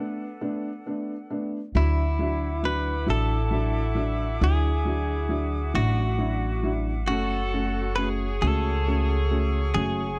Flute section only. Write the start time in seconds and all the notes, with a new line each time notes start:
Already playing: D4 A4 B4 F#5
1.74 F#4 E5 F#5 D6
7.09 C#5 C#6